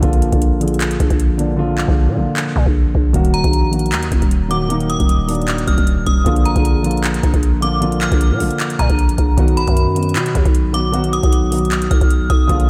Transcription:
0.01 A#1 D3 F3 A#3 F4, kick, closed hi-hat
0.13 closed hi-hat
0.22 closed hi-hat
0.31 A#1 D3 F3 A#3 F4, kick, closed hi-hat
0.42 closed hi-hat
0.60 D3 F3 A#3 G#4, closed hi-hat
0.68 closed hi-hat
0.74 closed hi-hat
0.81 clap, closed hi-hat
0.91 closed hi-hat
1.00 A#1, kick, closed hi-hat
1.10 A#1, kick, closed hi-hat
1.20 closed hi-hat
1.37 D3 F3 A#3 D4, closed hi-hat
1.56 D3 F3 A#3 F4
1.78 clap
1.88 A#1, kick
2.08 A#2
2.15 A#1 D3 F3 A#3 F4
2.36 clap
2.56 A#2, kick
2.66 A#1, kick
2.95 A#1, kick
3.13 D#1 D#3 F#3 A#3 F#4, kick, closed hi-hat
3.25 closed hi-hat
3.34 A#5, closed hi-hat
3.43 A#1 D#3 F#3 A#3 F#4, kick, closed hi-hat
3.53 closed hi-hat
3.71 D#3 F#3 A#3 F#4, closed hi-hat
3.79 closed hi-hat
3.86 closed hi-hat
3.92 D#2, clap, closed hi-hat
4.03 closed hi-hat
4.12 F#1, kick, closed hi-hat
4.22 D#1, kick, closed hi-hat
4.31 closed hi-hat
4.48 D#3 F#3 A#3 F#4 D6, closed hi-hat
4.69 D#3 F#3 A#3 D#4, closed hi-hat
4.80 closed hi-hat
4.90 D#6, closed hi-hat
5.00 D#1, kick, closed hi-hat
5.09 closed hi-hat
5.27 D#3 F#3 A#3 D4, closed hi-hat, open hi-hat
5.35 closed hi-hat
5.42 closed hi-hat
5.48 clap, closed hi-hat
5.58 closed hi-hat
5.67 D#1 F6, kick, closed hi-hat
5.78 D#1, kick, closed hi-hat
5.87 closed hi-hat
6.06 D#1 D#6, kick, closed hi-hat
6.24 A#1 D3 F3 A#3 F4, kick, closed hi-hat
6.36 closed hi-hat
6.45 A#5, closed hi-hat
6.54 A#1 D3 F3 A#3 G#4, kick, closed hi-hat
6.65 closed hi-hat
6.83 D3 F3 A#3 F4, closed hi-hat
6.91 closed hi-hat
6.97 closed hi-hat
7.04 clap, closed hi-hat
7.14 closed hi-hat
7.23 A#1, kick, closed hi-hat
7.34 A#1, kick, closed hi-hat
7.43 closed hi-hat
7.61 D3 F3 A#3 F4 D6, closed hi-hat
7.80 D3 F3 A#3 F4, closed hi-hat
7.92 closed hi-hat
8.01 F6, clap, closed hi-hat
8.12 A#1, kick, closed hi-hat
8.21 closed hi-hat
8.31 A#2
8.38 A#1 D3 F3 A#3 F4, closed hi-hat, open hi-hat
8.51 closed hi-hat
8.60 clap, closed hi-hat
8.70 closed hi-hat
8.79 A#2 A#5, kick, closed hi-hat
8.90 A#1, kick, closed hi-hat
8.99 closed hi-hat
9.09 closed hi-hat
9.18 A#1, kick, closed hi-hat
9.37 B1 D#3 F#3 B3 F#4, kick, closed hi-hat
9.48 closed hi-hat
9.57 B5, closed hi-hat
9.66 F#2 D#3 F#3 B3 F#4, kick, closed hi-hat
9.77 closed hi-hat
9.95 D#3 F#3 B3 F#4, closed hi-hat
10.03 closed hi-hat
10.09 closed hi-hat
10.16 B2, clap, closed hi-hat
10.26 closed hi-hat
10.35 D#2, kick, closed hi-hat
10.45 B1, kick, closed hi-hat
10.55 closed hi-hat
10.72 D#3 F#3 B3 F#4 D6, closed hi-hat
10.92 D#3 F#3 B3 F#4, closed hi-hat
11.04 closed hi-hat
11.13 D#6, closed hi-hat
11.23 B1, kick, closed hi-hat
11.32 closed hi-hat
11.51 D#3 F#3 B3 F#4, closed hi-hat, open hi-hat
11.59 closed hi-hat
11.65 closed hi-hat
11.71 clap, closed hi-hat
11.82 closed hi-hat
11.91 B1 F6, kick, closed hi-hat
12.01 B1, kick, closed hi-hat
12.10 closed hi-hat
12.30 B1 D#6, kick, closed hi-hat
12.47 A#1 D3 F3 A#3 F4, kick, closed hi-hat
12.60 closed hi-hat

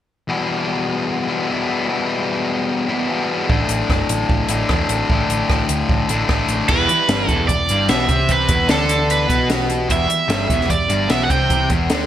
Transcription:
0.28 E2 B2 E3 G3 B3 E4
1.28 E2 B2 E3 G3 B3 E4
1.47 E2 B2 E3 G3 B3 E4
1.89 E2 B2 E3 G3 B3 E4
2.88 E2 B2 E3 G3 B3 E4
3.09 E2 B2 E3 G3 B3 E4
3.49 A1 A2 D3 A3 D4 E4, kick
3.68 A1, closed hi-hat
3.89 G1, kick, cross-stick
4.09 A1, closed hi-hat
4.29 A1, kick
4.49 A1 A2 D3 A3 D4 E4, closed hi-hat
4.69 E2 A2 D3 A3 D4 E4, kick, cross-stick
4.88 A1, closed hi-hat
5.09 A1 A2 D3 A3 D4 E4, kick
5.29 A1, closed hi-hat
5.49 A1, kick, cross-stick
5.69 D2, closed hi-hat
5.89 A1, kick
6.09 A1 A2 D3 A3 D4 E4, closed hi-hat
6.28 A1 A2 D3 A3 D4 E4, kick, cross-stick
6.48 A1, closed hi-hat
6.68 E1 E2 E3 G3 B3 E4 B4, kick, crash
6.89 muted distorted electric guitar stroke, muted picked electric bass stroke, closed hi-hat
7.08 G1 G2 G3, snare, closed hi-hat
7.28 E1 E2 E3 G3 B3 E4 A4, kick, closed hi-hat
7.48 E1 E2 D5, kick, closed hi-hat
7.69 G1 G2 G3, closed hi-hat
7.87 B1 B2 E3 G3 B3 E4 E5, snare, closed hi-hat
8.08 C2 C3 C4, kick, closed hi-hat
8.28 E3 G3 B3 E4 B4, kick, closed hi-hat
8.48 E1 E2 E3, kick, closed hi-hat
8.67 D2 D3 D4 A4, snare, closed hi-hat
8.88 E3 G3 B3 E4, closed hi-hat
9.10 B4, closed hi-hat
9.28 B1 B2 B3, kick, closed hi-hat
9.48 E3 G3 B3 E4, snare, closed hi-hat
9.70 closed hi-hat
9.88 E1 E2 E3 G3 B3 E4, kick, closed hi-hat
9.92 E5
10.08 muted distorted electric guitar stroke, muted picked electric bass stroke, closed hi-hat
10.28 G1 G2 G3, snare, closed hi-hat
10.48 E1 E2 E3 G3 B3 E4, kick, closed hi-hat
10.52 E3
10.61 snare
10.69 E1 E2 D5, kick, closed hi-hat
10.89 G1 G2 G3, closed hi-hat
11.08 B1 B2 E3 G3 B3 E5, snare, closed hi-hat
11.13 E4
11.25 F#5
11.29 C2 C3 C4 G5, kick, closed hi-hat
11.49 E3 G3 B3 E4, kick, closed hi-hat
11.70 E1 E2 E3, kick, closed hi-hat
11.90 D2 D3 D4, snare, closed hi-hat

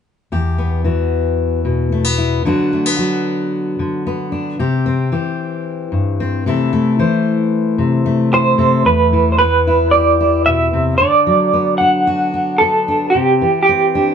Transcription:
0.32 E2 G4
0.58 B3
0.84 E3 F#4
1.65 B2
1.92 A3
2.05 B3
2.18 E4
2.45 D3 F#3 B3 D4 F#4
2.73 A3
2.86 B3
2.98 F#3 F#4
3.79 D3
4.07 B3
4.32 D4
4.59 C3 G4
4.86 C4
5.12 E3 G4
5.92 G2
6.20 C4
6.46 C3 E3 A3 E4 A4
6.73 A3
6.99 E3 C5
7.78 C3
8.06 A3
8.33 E4 C5
8.58 C3 A4
8.85 E2 B4
9.13 E3
9.32 C5
9.39 B3 B4
9.67 E4
9.91 G4 D5
10.21 E4
10.46 B2 E5
10.73 C3
10.98 D3 D5
11.27 F#3
11.53 B3
11.78 D4 F#5
12.07 F#4
12.34 D4
12.58 B3 A4
12.88 D4
13.10 G4
13.15 C3
13.41 E3
13.63 G4
13.69 C4
13.95 D4

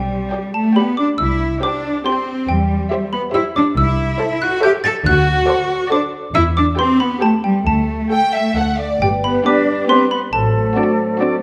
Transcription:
Already playing: B1 G3 G5
0.33 G4 D5 G5
0.54 A3 A5
0.76 B3 G4 D5 G5 B5
0.97 D4 D6
1.18 C2 E4 E6
1.63 D4 G4 C5 G5 D6
2.05 C4 G4 C5 G5 C6
2.48 E2 G3 G5
2.91 G4 C5 E5
3.13 B3 B5
3.33 E4 G4 C5 E5 E6
3.56 D4 D6
3.76 C2 E4 E6
4.19 A4 C5 E5
4.41 F#4 F#6
4.63 G4 A4 C5 E5 G6
4.84 A4 A6
5.05 D2 F#4 F#6
5.48 A4 C5 D5
5.90 D4 A4 C5 D5 D6
6.34 E2 E4 E6
6.56 D4 D6
6.77 C4 G4 B4 G5 C6
6.99 B3 B5
7.21 A3 G4 B4 G5 A5
7.44 G3 G5
7.66 D2 A3 A5
8.11 A4 G5
8.33 E5
8.56 D2 A4 F#5
8.79 D5
9.02 G1 G3 G4 B4 G5
9.23 B3 B4 B5
9.45 B3 D4 G4 B4 D5 D6
9.89 B3 C4 D4 G4 B4 C5 C6
10.11 B3 B4 B5
10.32 A1 F#3 A3 A4 C5 A5
10.76 C4 D4 F#4 D5
11.19 C4 D4 F#4 D5

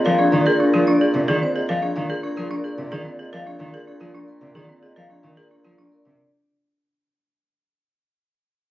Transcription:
Already playing: A#2
0.05 F3 A#4 F5
0.18 D4 G#4
0.32 D#3 D5
0.46 G#4 A#4
0.60 D4 G#4
0.73 F3 F4 A#4
0.87 D4 D5
1.01 G#4 A#4
1.14 C3 D5
1.28 D#3 G#4 D5
1.42 C4 C5
1.56 G#4 D#5
1.69 F3 A#4 F5
1.82 D4 G#4
1.96 D#3 D5
2.10 G#4 A#4
2.23 D4 G#4
2.37 F3 F4 A#4
2.51 D4 D5
2.64 G#4 A#4
2.78 C3 D5
2.92 D#3 G#4 D5
3.05 C4
3.19 G#4 D#5
3.33 F3 A#4 F5
3.47 D4 G#4
3.60 D#3 D5
3.74 G#4 A#4
3.87 D4 G#4
4.00 F3 F4 A#4
4.15 D4 D5
4.28 A#4
4.41 C3 D5
4.55 D#3 G#4 D5
4.69 C4
4.83 G#4 D#5
4.96 F3 A#4 F5
5.10 D4 G#4
5.23 D#3 D5
5.37 G#4 A#4
5.51 D4 G#4
5.65 F3 F4
5.78 D4 D5
5.92 A#4
6.05 C3 D5

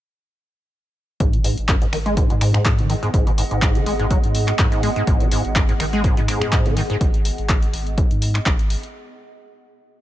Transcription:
1.20 G#1 G#2 B3, kick, closed hi-hat
1.33 B2, closed hi-hat
1.44 G#2, open hi-hat
1.53 G#4
1.58 G#1, closed hi-hat
1.63 D#5
1.69 F#2, kick, clap, closed hi-hat
1.82 G#2, closed hi-hat
1.91 G#1 D#3 F#5, finger snap, open hi-hat
2.06 G#3, closed hi-hat
2.17 G#2, kick, closed hi-hat
2.30 G#2 B2, closed hi-hat
2.41 G#2, finger snap, open hi-hat
2.54 G#2, finger snap, closed hi-hat
2.65 G#2, kick, clap, closed hi-hat
2.78 D#3, closed hi-hat
2.89 D#3, open hi-hat
3.03 G#2, closed hi-hat
3.14 G#1 G#2, kick, closed hi-hat
3.27 B2, closed hi-hat
3.38 G#2, open hi-hat
3.51 G#1 G#2, closed hi-hat
3.62 G#2, kick, clap, closed hi-hat
3.75 D#3, closed hi-hat
3.86 G#1 G#3, open hi-hat
3.99 G#2, closed hi-hat
4.11 F#3, kick, closed hi-hat
4.24 G#2, closed hi-hat
4.35 open hi-hat
4.48 finger snap, clap, closed hi-hat
4.59 F#2 G#2, kick, clap, closed hi-hat
4.72 G#2, closed hi-hat
4.83 G#3, open hi-hat
4.96 G#2, closed hi-hat
5.07 G#1 G#2, kick, closed hi-hat
5.20 B2, closed hi-hat
5.32 G#2, open hi-hat
5.45 G#1, closed hi-hat
5.56 F#2, kick, clap, closed hi-hat
5.69 G#2, closed hi-hat
5.80 G#1 D#3, finger snap, open hi-hat
5.93 G#3, closed hi-hat
6.04 G#2, kick, closed hi-hat
6.17 G#2 B2, closed hi-hat
6.28 G#2, finger snap, open hi-hat
6.41 G#2, finger snap, closed hi-hat
6.52 G#2, kick, clap, closed hi-hat
6.66 D#3, closed hi-hat
6.77 D#3, open hi-hat
6.90 G#2, closed hi-hat
7.01 G#1, kick, closed hi-hat
7.14 closed hi-hat
7.25 open hi-hat
7.38 G#1, closed hi-hat
7.49 kick, clap, closed hi-hat
7.62 closed hi-hat
7.73 G#1, open hi-hat
7.87 closed hi-hat
7.98 kick, closed hi-hat
8.11 G#2, closed hi-hat
8.22 open hi-hat
8.35 finger snap, clap, closed hi-hat
8.46 G#1, kick, clap, closed hi-hat
8.59 closed hi-hat
8.70 open hi-hat
8.83 closed hi-hat

